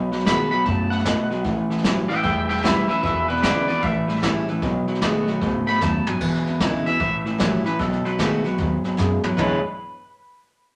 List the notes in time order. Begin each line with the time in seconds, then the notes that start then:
Already playing: B1 B2
0.12 B2 F#3, snare
0.19 snare
0.25 B2 D#3 G#3 A3 B3 F#4 B5, kick, snare, hi-hat pedal
0.51 B2 F#3 B3 F#4 B5, muted upright bass stroke, snare
0.65 F#2 B2 C#3 A3 A5, kick, snare
0.90 B2 A3 F#5, snare
0.98 snare
1.05 B2 A3, kick, snare, hi-hat pedal
1.30 B2 F#3, muted upright bass stroke, snare
1.44 A1 A2 E3, kick, snare
1.70 A2 E3, snare
1.77 snare
1.83 A2 E3 F#3 G3 C#4 E4, kick, snare, hi-hat pedal
2.08 A2 E3 C#4 E4 E5 G5, muted upright bass stroke, snare
2.23 E1 E2 A2 G3 E5 G5, kick, snare
2.49 A2 G3 E5 G5, snare
2.57 snare
2.62 A2 E3 G3 C#4 E4 B4 E5, kick, snare, hi-hat pedal
2.88 A2 E3 C#4 E4 B4 E5, muted upright bass stroke, snare
3.03 E1 E2 B2 B4 E5, kick, snare
3.28 E2 B2 B4 D5, snare
3.36 snare
3.42 E2 C#3 D3 G#3 B3 E4 B4 D5, kick, snare, hi-hat pedal
3.68 E2 B2 B3 E4 B4 D5, muted upright bass stroke, snare
3.82 A1 A2 E3 E5, kick, snare
4.07 A2 G3, snare
4.16 snare
4.22 A2 E3 G3 C#4 E4, kick, snare, hi-hat pedal
4.48 A2 E3 C#4 E4, muted upright bass stroke, snare
4.62 B1 B2 F#3, kick, snare
4.87 B2 F#3, muted upright bass stroke, snare
4.95 snare
5.01 B1 B2 D#3 G#3 A3 B3 F#4, kick, snare, hi-hat pedal
5.27 B2 F#3, muted upright bass stroke, snare
5.41 C#2 G#2 B2 A3, kick, snare
5.67 B2 A3 B5, snare
5.74 snare
5.81 D#2 F#2 B2 A3 A5, kick, snare, hi-hat pedal
6.07 B2 F#3 G#5, floor tom
6.20 E2 B2, kick, snare, crash
6.34 snare
6.46 E2 B2, snare
6.60 B1 E2 C#3 D3 G#3 B3 E4, kick, snare, hi-hat pedal
6.86 E2 B2 B3 E4 E5, muted upright bass stroke, snare
7.00 A1 A2 E3, kick, snare
7.25 A2 E3, snare
7.38 A#1 A2 E3 F#3 G3 C#4 E4, kick, snare, hi-hat pedal
7.64 A2 E3 C#4 E4 B4, muted upright bass stroke, snare
7.79 B1 B2 F#3 A4, kick, snare
7.93 snare
8.05 B2 F#3 B4, muted upright bass stroke, snare
8.18 C#2 B2 D#3 G#3 A3 B3 F#4, kick, snare, hi-hat pedal
8.44 B2 F#3 B3 F#4, muted upright bass stroke, snare
8.58 D#2 G#2 B2 F#3, kick, snare
8.84 B2 F#3, muted upright bass stroke, snare
8.97 F#2 B2 G#3, kick, snare, hi-hat pedal
9.24 B2 F#3, floor tom
9.37 E2 B2 D3 E3 G#3 B3 D4 E4 G#4 B4 C#5, kick, floor tom